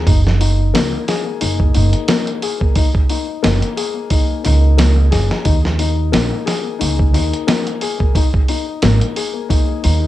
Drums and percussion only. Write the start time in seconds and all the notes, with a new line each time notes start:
0.07 kick, open hi-hat
0.27 snare
0.41 open hi-hat
0.75 snare, open hi-hat
1.08 snare, open hi-hat
1.41 open hi-hat
1.60 kick
1.75 open hi-hat
1.93 closed hi-hat
2.08 snare, open hi-hat
2.27 closed hi-hat
2.42 open hi-hat
2.61 kick
2.75 kick, open hi-hat
2.95 kick
3.10 open hi-hat
3.44 snare, open hi-hat
3.62 closed hi-hat
3.77 open hi-hat
4.10 kick, open hi-hat
4.45 open hi-hat
4.78 snare, open hi-hat
5.12 snare, open hi-hat
5.31 snare
5.45 kick, open hi-hat
5.65 snare
5.79 open hi-hat
6.13 snare, open hi-hat
6.47 snare, open hi-hat
6.81 open hi-hat
6.99 kick
7.14 open hi-hat
7.34 closed hi-hat
7.48 snare, open hi-hat
7.67 closed hi-hat
7.81 open hi-hat
8.00 kick
8.15 kick, open hi-hat
8.34 kick
8.48 open hi-hat
8.82 snare, open hi-hat
9.01 closed hi-hat
9.16 open hi-hat
9.50 kick, open hi-hat
9.84 open hi-hat